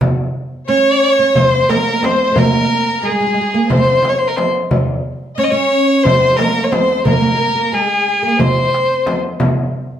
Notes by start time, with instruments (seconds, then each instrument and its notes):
0.01 darbuka dum, frame drum
0.68 oud C#4, violin C#5, violin section C#5, darbuka ka
1.19 oud C#4
1.35 oud C4, violin section C5, violin C5, frame drum, darbuka dum
1.68 oud A#3, violin section A#4, violin A#4, darbuka tek, frame drum
2.02 oud C4, violin section C5, violin C5, darbuka tek, frame drum
2.32 oud C4
2.36 oud A#3, violin section A#4, violin A#4, frame drum, darbuka dum
3.03 oud G#3, violin section G#4, violin G#4, darbuka ka
3.11 oud G#3
3.20 oud G#3
3.27 oud G#3
3.34 oud G#3
3.41 oud G#3
3.54 oud A#3
3.69 oud C4, violin section C5, violin C5, frame drum, darbuka dum
3.77 oud A#3
3.84 oud C4
4.03 darbuka tek, frame drum
4.09 violin C#5
4.18 violin C5
4.27 violin A#4
4.36 violin C5, darbuka tek, frame drum
4.71 darbuka dum, frame drum
5.35 oud C#4, violin section C#5 D#5, violin C#5
5.39 darbuka ka
5.43 violin D#5
5.51 oud C#4, violin C#5, violin section C#5
6.03 oud C4, violin C5, violin section C5, frame drum, darbuka dum
6.33 oud G#3, violin A#4
6.38 oud A#3, violin section A#4, darbuka tek, frame drum
6.64 violin C#5
6.71 oud C4, violin C5, violin section C5, darbuka tek, frame drum
7.05 oud A#3, violin section A#4, violin A#4, darbuka dum, frame drum
7.13 oud A#3
7.20 oud A#3
7.27 oud A#3
7.35 oud A#3
7.39 oud A#3, darbuka ka
7.55 oud A#3
7.72 oud G#3, violin section G#4, violin G#4, darbuka ka
7.90 darbuka ka
8.07 darbuka ka
8.23 oud A#3
8.39 oud C4, violin section C5, violin C5, frame drum, darbuka dum
8.74 darbuka tek
9.06 darbuka tek, frame drum
9.40 frame drum, darbuka dum